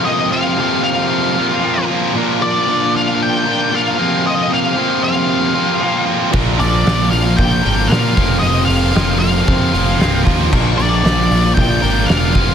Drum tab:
CC |--------|--------|--------|x-------|
HH |--------|--------|--------|-ooooooo|
SD |--------|--------|--------|--o---o-|
BD |--------|--------|--------|o---o--o|

CC |--------|x-------|
HH |oooooooo|-ooooooo|
SD |--o---o-|--o---o-|
BD |----o--o|o---o--o|